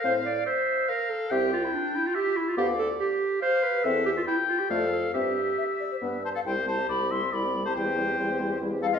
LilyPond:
<<
  \new Staff \with { instrumentName = "Flute" } { \time 3/4 \key f \major \tempo 4 = 141 f''8 r2 r8 | \key c \major e''8 r2 r8 | f''8 r2 r8 | e''8 r4. d''8 r8 |
e''8 r8 e''8 d''16 c''16 b'8 a''16 f''16 | g''8 a''8 b''8 c'''8 b''8. a''16 | g''2 r8 f''16 ees''16 | }
  \new Staff \with { instrumentName = "Oboe" } { \time 3/4 \key f \major f''4 e''4 f''4 | \key c \major g''2 e''4 | d''4. r8 f''4 | e''4 g''4 f''4 |
e''2~ e''8 c''16 a'16 | c''8 c''8 d''8 e''8 d''8. c''16 | c''2 r8 a'16 f'16 | }
  \new Staff \with { instrumentName = "Clarinet" } { \time 3/4 \key f \major c''8 d''8 c''4 bes'8 a'8 | \key c \major g'8 f'16 e'16 d'8 e'16 f'16 g'8 e'16 f'16 | g'8 a'8 g'4 c''8 b'8 | a'8 g'16 f'16 e'8 f'16 g'16 a'8 a'8 |
g'2 r4 | e'16 g'16 e'16 g'16 e'16 g'16 e'16 g'16 e'16 g'16 e'16 g'16 | e'16 g'16 e'16 g'16 e'16 g'16 e'16 g'16 e'16 g'16 e'16 g'16 | }
  \new Staff \with { instrumentName = "French horn" } { \time 3/4 \key f \major c'8 r2 r8 | \key c \major c'8 r2 r8 | b8 r2 r8 | c'8 r4. a8 r8 |
c'8 r4. b8 r8 | g16 c'16 g16 c'16 g16 c'16 g16 c'16 g16 c'16 g16 c'16 | g16 c'16 g16 c'16 g16 c'16 g16 c'16 g16 c'16 g16 c'16 | }
  \new Staff \with { instrumentName = "Bassoon" } { \clef bass \time 3/4 \key f \major a,4 r2 | \key c \major c,4 r2 | d,4 r2 | e,4 r4 f,4 |
g,4 r4 g,4 | c,4 c,4 c,4 | e,4 e,4 e,4 | }
>>